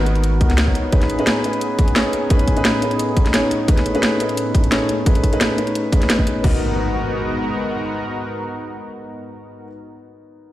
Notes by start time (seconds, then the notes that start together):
Already playing: G#1 B3 D#4 F#4 A#4 B4 A#5
0.06 B3 D#4 F#4 A#4, closed hi-hat
0.15 closed hi-hat
0.24 closed hi-hat
0.40 C#2 B3 D#4 F#4 A#4, kick, closed hi-hat
0.50 snare, closed hi-hat
0.58 snare, closed hi-hat
0.66 B3 D#4 F#4 C#5, kick
0.75 closed hi-hat
0.92 A2 C#4 D#4 G#4 B4, kick, closed hi-hat
1.02 snare, closed hi-hat
1.10 closed hi-hat
1.18 C#4 D#4 G#4 B4, closed hi-hat
1.27 snare, closed hi-hat
1.43 C#4 D#4 G#4 B4, closed hi-hat
1.53 closed hi-hat
1.61 closed hi-hat
1.79 kick, closed hi-hat
1.88 closed hi-hat
1.95 C#4 D#4 G#4 C#5, snare, closed hi-hat
2.13 closed hi-hat
2.30 C#4 D#4 G#4 B4, kick, closed hi-hat
2.39 closed hi-hat
2.48 kick, closed hi-hat
2.56 C#4 D#4 G#4 B4, closed hi-hat
2.65 snare, closed hi-hat
2.81 C#4 D#4 G#4 B4, closed hi-hat
2.91 closed hi-hat
2.99 closed hi-hat
3.17 kick, closed hi-hat
3.26 snare, closed hi-hat
3.33 C#4 D#4 G#4 C#5, snare, closed hi-hat
3.51 closed hi-hat
3.68 A3 C#4 D#4 G#4 B4, kick, closed hi-hat
3.77 snare, closed hi-hat
3.86 closed hi-hat
3.94 C#4 D#4 G#4 B4, closed hi-hat
4.03 snare, closed hi-hat
4.19 C#4 D#4 G#4 B4, closed hi-hat
4.29 closed hi-hat
4.37 closed hi-hat
4.55 kick, closed hi-hat
4.64 closed hi-hat
4.71 C#4 D#4 G#4 C#5, snare, closed hi-hat
4.89 closed hi-hat
5.05 C#4 D#4 G#4 B4, kick, closed hi-hat
5.15 closed hi-hat
5.24 kick, closed hi-hat
5.32 C#4 D#4 G#4 B4, closed hi-hat
5.41 snare, closed hi-hat
5.57 C#4 D#4 G#4 B4, closed hi-hat
5.67 closed hi-hat
5.75 closed hi-hat
5.92 C#4 D#4 G#4 B4, kick, closed hi-hat
6.02 snare, closed hi-hat
6.10 snare, closed hi-hat
6.18 C#4 D#4 G#4 D#5, kick
6.27 closed hi-hat
6.42 G#2 B3 D#4 F#4 A#4, kick, crash, impact
6.46 A#4